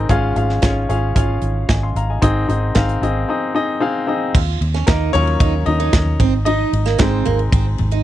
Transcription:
Already playing: C4 D#4 G#4 A#4 D#5
0.09 G#1 G#2 G#3 C#4 F4 G#4 F5, kick, closed hi-hat
0.36 G#1 C#4 F4 G#4 F5, closed hi-hat
0.49 snare
0.62 G#1 C#4 F4 G#4 C#5, kick, snare, closed hi-hat
0.89 G#1 C#4 F4 G#4 F5, closed hi-hat
1.15 G#1 C#4 F4 G#4 F5, kick, closed hi-hat
1.42 G#1, closed hi-hat
1.69 G#1 D#5 G#5, kick, snare, closed hi-hat
1.83 F5 C6
1.95 G#1 F5 A#5, closed hi-hat
2.10 D#5 G#5
2.22 G#1 G#2 D#3 C4 D#4 G#4 D#5, kick, closed hi-hat
2.48 G#1 C4 D#4 G#4 D#5, closed hi-hat
2.75 G#1 C4 D#4 G#4 F5, kick, snare, closed hi-hat
2.89 closed hi-hat
3.01 G#1 C4 D#4 G#4 D#5, closed hi-hat
3.29 C4 D#4 G#4 D#5
3.54 C4 D#4 G#4 D#5
3.80 C4 D#4 G#4 F5
4.07 C4 D#4 G#4 D#5
4.35 D#2 F4, kick, crash
4.61 D#2, ride
4.74 C#4, snare
4.87 D#2 A#3 D#4 A#4, kick, snare, clap, ride
5.13 D#2 F#3 C#4 D#4 F4 C#5, floor tom, ride
5.27 ride
5.40 D#2 D#4, kick, ride
5.66 D#2 D#4 D#5, floor tom, ride
5.80 D#4
5.93 D#2, kick, snare, clap, ride
6.06 floor tom
6.20 G#1 C4, kick, ride
6.45 D#4 D#5, ride
6.73 G#1, ride
6.86 A#3, snare
6.98 G#1 G#3 C4 D#4, kick, snare, clap, ride
7.25 G#1 A#3, floor tom, ride
7.39 ride
7.52 G#1 C4, kick, ride
7.78 G#1, floor tom, ride
7.91 D#4, ride

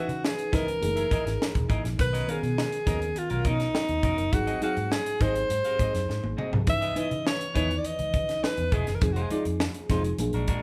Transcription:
Already playing: E3 C#4 D#4 F#4 B4
0.09 C#3, muted clean electric guitar stroke, closed hi-hat
0.24 G#4, muted clean electric guitar stroke, snare
0.38 muted clean electric guitar stroke, closed hi-hat
0.52 C#2 E3 B3 C#4 D#4 E4 G#4 A#4 B4 D#5, kick, snare, closed hi-hat
0.67 muted clean electric guitar stroke, closed hi-hat
0.81 F#1 E3 A3 D#4 G#4, muted clean electric guitar stroke, closed hi-hat
0.88 A#3
0.96 E4 G#4 A#4 E5, closed hi-hat
1.11 E4 G#4 A#4 D#5, kick, closed hi-hat
1.26 G#1, muted clean electric guitar stroke, snare, closed hi-hat
1.41 muted clean electric guitar stroke, snare
1.55 E1, muted clean electric guitar stroke, kick, closed hi-hat
1.69 G#1 E4 G#4 A#4 D#5, kick, closed hi-hat
1.84 A#1, muted clean electric guitar stroke, snare, closed hi-hat
1.98 B1 D#3 B3 C#4 A#4 B4, muted clean electric guitar stroke, kick, closed hi-hat
2.13 C#4 F#4 A#4 D#5, closed hi-hat
2.28 D#3 B3 C#4 F#4 G#4 A#4 F5, closed hi-hat
2.43 B2, muted clean electric guitar stroke, closed hi-hat
2.58 muted clean electric guitar stroke, snare
2.72 muted clean electric guitar stroke, closed hi-hat
2.86 D#2 D#3 B3 C#4 F#4 A#4 D#5, kick, snare, closed hi-hat
3.01 muted clean electric guitar stroke, closed hi-hat
3.15 F4, muted clean electric guitar stroke, closed hi-hat
3.30 B1 C#4 F#4 A#4 F5, closed hi-hat
3.45 B2 C#4 D#4 F#4 A#4 D#5, kick, closed hi-hat
3.60 muted clean electric guitar stroke, snare, closed hi-hat
3.74 muted clean electric guitar stroke, snare
3.89 D#2, muted clean electric guitar stroke, closed hi-hat
4.03 F1 C#4 F#4 A#4 D#5, kick, closed hi-hat
4.18 F#1, muted clean electric guitar stroke, closed hi-hat
4.32 G#1 F#3 C4 D#4 F#4 G#4, muted clean electric guitar stroke, kick, closed hi-hat
4.47 C4 F#4 G#4 D#5, closed hi-hat
4.61 F#3 C4 D#4 F#4 G#4 F5, closed hi-hat
4.77 G#2, muted clean electric guitar stroke, closed hi-hat
4.92 G#4, muted clean electric guitar stroke, snare
5.06 muted clean electric guitar stroke, closed hi-hat
5.20 G#1 F#3 C4 D#4 F#4 G4 G#4 C5 D#5, kick, closed hi-hat
5.27 G#4
5.36 muted clean electric guitar stroke, closed hi-hat
5.50 G#2, muted clean electric guitar stroke, closed hi-hat
5.64 C4 F#4 G#4 F5, closed hi-hat
5.79 G#2 C4 F#4 G#4 D#5, kick, closed hi-hat
5.94 F#2, muted clean electric guitar stroke, snare, closed hi-hat
6.08 G#2, muted clean electric guitar stroke, snare
6.23 G#1, muted clean electric guitar stroke, high tom
6.37 C4 F#4 G#4 D#5, mid tom
6.52 C2, muted clean electric guitar stroke, floor tom
6.66 C#2 E3 C#4 D#4 B4 E5, muted clean electric guitar stroke, kick, closed hi-hat
6.81 B3 E4 G#4 D#5, closed hi-hat
6.95 E3 B3 C#4 D#4 E4 G#4 B4 D#5 E5, closed hi-hat
7.11 C#3, muted clean electric guitar stroke, closed hi-hat
7.25 C#5, muted clean electric guitar stroke, snare
7.39 muted clean electric guitar stroke, closed hi-hat
7.54 E2 D#3 B3 C#4 D#4 E4 G#4 B4 C#5 D#5, kick, closed hi-hat
7.61 E3
7.69 muted clean electric guitar stroke, closed hi-hat
7.78 D5
7.84 D#5, muted clean electric guitar stroke, closed hi-hat
7.99 C#2, muted clean electric guitar stroke, closed hi-hat
8.14 C#3, kick, closed hi-hat
8.29 muted clean electric guitar stroke, snare, closed hi-hat
8.43 B4, muted clean electric guitar stroke, snare
8.57 E2, muted clean electric guitar stroke, closed hi-hat
8.72 E1 B3 E4 G#4 D#5, kick, closed hi-hat
8.87 F#1, muted clean electric guitar stroke, snare, closed hi-hat
8.95 A#4
9.01 F1 F3 C4 D#4 G#4, muted clean electric guitar stroke, kick, closed hi-hat
9.13 F#4 C5, closed hi-hat
9.17 G#3 D#4 F4
9.21 G#4
9.30 F3 G#3 C4 D#4 F4 G#4 D5, closed hi-hat
9.45 F2, muted clean electric guitar stroke, closed hi-hat
9.60 muted clean electric guitar stroke, snare
9.74 muted clean electric guitar stroke, closed hi-hat
9.89 F1 F3 G#3 C4 D#4 F4 G#4 C5, kick, snare, closed hi-hat
10.04 muted clean electric guitar stroke, closed hi-hat
10.18 A#1 F#3 A#3 D4 G#4, muted clean electric guitar stroke, closed hi-hat
10.33 A#1 G#3 D4 F#4 A#4, closed hi-hat
10.48 A#2 G#3 D4 F#4 A#4, kick, closed hi-hat

